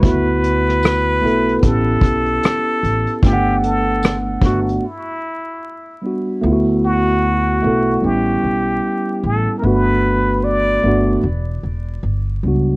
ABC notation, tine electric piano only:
X:1
M:4/4
L:1/8
Q:"Swing 16ths" 1/4=75
K:D
V:1 name="Tine electric piano"
[A,B,EF]2 z [A,B,EA] [B,=C^CEG]3 z | [A,B,D=F^f]2 z [A,B,D^F] z3 [G,B,DF] | [A,B,E=F^F]2 z [A,B,EA] [G,B,CE]3 z | [A,B,DF]2 z [A,B,DF] z3 [G,B,DF] |]